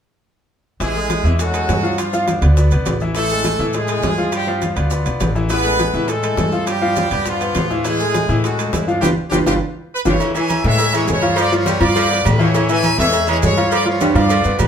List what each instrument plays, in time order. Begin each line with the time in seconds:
0.80 upright bass A1, grand piano E3 E4 E5, horn section G#3 E4 G#4, high bongo, high conga, high timbale, maracas
0.95 grand piano G#3 G#4 A4, high conga
1.10 high bongo, high conga, high timbale, low timbale, maracas
1.24 upright bass E2, grand piano E3 E4 E5, maracas
1.39 horn section F#3 C#4 F#4, grand piano G#3 G#4 A4, high bongo, high conga, high timbale, maracas
1.54 grand piano G#3 G#4 A4, high conga, high timbale, maracas
1.69 upright bass G2, high bongo, low bongo, high conga, high timbale, low timbale, maracas
1.83 grand piano F3 F4 F5, maracas
1.98 horn section F3 D4 F4, high bongo, high conga, high timbale, maracas
2.13 grand piano F3 F4 F5, high conga, maracas
2.27 horn section D3 B3 D4, high bongo, high conga, high timbale, low timbale, maracas
2.42 upright bass D2, grand piano B3 B4 D5, high bongo, high conga, low conga, high timbale, maracas
2.57 grand piano B3 B4 D5, high bongo, high conga, maracas
2.71 upright bass B1, grand piano B3 B4 D5, high bongo, high conga, high timbale, maracas
2.86 upright bass A1, high bongo, low bongo, high conga, high timbale, low timbale, maracas
3.00 grand piano E3 E4 E5, high bongo, high conga, maracas
3.15 grand piano E3 E4 E5, horn section A3 E4 A4, high bongo, high timbale, maracas
3.29 grand piano G#3 G#4 A4, high conga, maracas
3.44 high bongo, high conga, high timbale, low timbale, maracas
3.58 upright bass A2, grand piano E3 E4 E5, maracas
3.73 grand piano G#3 G#4 A4, horn section G#3 E4 G#4, high bongo, high conga, high timbale, maracas
3.88 grand piano G#3 G#4 A4, high conga, high timbale, maracas
4.02 upright bass G2, high bongo, low bongo, high conga, high timbale, low timbale, maracas
4.17 grand piano F3 F4 F5, high conga, maracas
4.32 horn section G3 D4 G4, high bongo, high conga, high timbale, maracas
4.47 grand piano F3 F4 F5, high conga
4.62 horn section F3 D4 F4, high bongo, high conga, high timbale, low timbale, maracas
4.76 upright bass D2, grand piano B3 B4 D5, high bongo, high conga, low conga, high timbale, maracas
4.90 grand piano B3 B4 D5, high bongo, high conga, maracas
5.06 upright bass B1, grand piano B3 B4 D5, high bongo, high conga, high timbale, maracas
5.20 upright bass A1, high bongo, low bongo, high conga, high timbale, low timbale, maracas
5.35 grand piano E3 E4 E5, high bongo, high conga, maracas
5.49 grand piano E3 E4 E5, horn section B3 G#4 B4, high bongo, high timbale, maracas
5.64 grand piano G#3 G#4 A4, high conga, maracas
5.79 high bongo, high conga, high timbale, low timbale, maracas
5.94 upright bass A2, grand piano E3 E4 E5, maracas
6.08 grand piano G#3 G#4 A4, horn section A3 E4 A4, high bongo, high conga, high timbale, maracas
6.23 grand piano G#3 G#4 A4, high conga, high timbale, maracas
6.37 upright bass G2, high bongo, low bongo, high conga, high timbale, low timbale, maracas
6.52 grand piano F3 F4 F5, maracas
6.67 horn section G3 D4 G4, high bongo, high conga, high timbale, maracas
6.81 grand piano F3 F4 F5, high conga
6.96 high bongo, high conga, high timbale, low timbale, maracas
7.11 upright bass G2, grand piano B3 B4 D5, high bongo, high conga, low conga, high timbale, maracas
7.26 horn section F3 D4 F4, grand piano B3 B4 D5, high bongo, high conga, low conga, maracas
7.40 grand piano B3 B4 D5, high bongo, high conga, high timbale, maracas
7.55 upright bass A2, high bongo, low bongo, high conga, high timbale, low timbale, maracas
7.70 grand piano E3 E4 E5, high bongo, high conga, maracas
7.84 grand piano E3 E4 E5, horn section G#3 E4 G#4, high bongo, high conga, high timbale, maracas
8.00 grand piano G#3 G#4 A4, high conga, maracas
8.14 high bongo, high conga, high timbale, low timbale, maracas
8.29 upright bass A2, grand piano E3 E4 E5, maracas
8.44 horn section F#3 C#4 F#4, grand piano G#3 G#4 A4, high bongo, high conga, high timbale, maracas
8.58 grand piano G#3 G#4 A4, high conga, high timbale, maracas
8.73 upright bass G2, horn section E3 C#4 E4, high bongo, low bongo, high conga, high timbale, low timbale, maracas
8.87 horn section D3 B3 D4, grand piano F3 F4 F5, maracas
9.00 upright bass G1, horn section G3 D4 F4 G4, grand piano F4 G4 B4, high bongo, high conga, high timbale, maracas
9.30 upright bass G1, horn section G3 D4 F4 G4, grand piano F4 G4 B4, high bongo, high conga, high timbale, maracas
9.46 upright bass G1, horn section G3 D4 F4 G4, grand piano F4 G4 B4, high bongo, high conga, high timbale, maracas
9.94 trumpet section B4
10.05 upright bass G1, horn section G3 D4 F4 G4, trumpet section E4 G#4 C#5, grand piano F4 G4 B4, high bongo, high conga, high timbale, maracas
10.20 grand piano E3 E4 E5, cowbell, low agogo, maracas
10.35 grand piano E3 E4 E5, saxophone section E3, trumpet section C#5 E5 G#5, high conga, low agogo, maracas
10.49 cowbell, high conga, low timbale, low agogo, maracas
10.64 upright bass A2, saxophone section E3, grand piano G#3 G#4 A4, trumpet section G#4 C#5 E5, cowbell, maracas
10.79 cowbell, high conga, low agogo, maracas
10.93 grand piano E3 E4 E5, saxophone section G#3, trumpet section C#5, high conga, low agogo, maracas
11.08 upright bass G2, grand piano G#3 G#4 A4, trumpet section E4 G#4 C#5, cowbell, high conga, low timbale, maracas
11.22 grand piano F3 F4 F5, cowbell, high conga, low agogo, maracas
11.36 saxophone section F3, trumpet section F4 B4, cowbell, high conga, low agogo, maracas
11.40 trumpet section D5
11.52 grand piano F3 F4 F5, trumpet section F4 C#5, high conga, maracas
11.66 saxophone section G3, grand piano B3 B4 D5, cowbell, high conga, low timbale, low agogo, maracas
11.80 upright bass G2, grand piano F3 F4 F5, trumpet section F4 B4 D5, high conga, low conga, low agogo, maracas
11.95 saxophone section F3, cowbell, high conga, low agogo, maracas
12.10 grand piano B3 B4 D5, high conga
12.25 upright bass A2, trumpet section B4, cowbell, high conga, low timbale, low agogo, maracas
12.38 grand piano E3 E4 E5, saxophone section F3, trumpet section E4 G#4 C#5, high conga, maracas
12.54 grand piano E3 E4 E5, cowbell, high conga, low agogo, maracas
12.69 grand piano E3 E4 E5, saxophone section E3, trumpet section C#5 E5 G#5, low agogo, maracas
12.83 cowbell, high conga, low timbale, low agogo, maracas
12.98 upright bass E2, saxophone section E3, grand piano G#3 G#4 A4, trumpet section G#4 C#5 E5, cowbell, maracas
13.13 cowbell, high conga, low agogo, maracas
13.27 grand piano E3 E4 E5, saxophone section G#3, trumpet section C#5, high conga, low agogo, maracas
13.42 upright bass G2, grand piano G#3 G#4 A4, trumpet section E4 G#4 C#5, cowbell, high conga, low timbale, maracas
13.57 grand piano F3 F4 F5, cowbell, low agogo, maracas
13.70 saxophone section F3, trumpet section F4 B4 D5, cowbell, high conga, low agogo, maracas
13.85 grand piano F3 F4 F5, trumpet section F4 C#5, high conga
14.01 saxophone section G3, grand piano B3 B4 D5, cowbell, high conga, high timbale, low agogo, maracas
14.15 upright bass G2, grand piano F3 F4 F5, trumpet section F4 B4 D5, high conga, low conga, high timbale, low agogo, maracas
14.29 saxophone section F3, cowbell, high conga, low agogo, maracas
14.44 upright bass G2, grand piano B3 B4 D5, high conga, maracas
14.59 upright bass A2, trumpet section B4, cowbell, high conga, low timbale, low agogo, maracas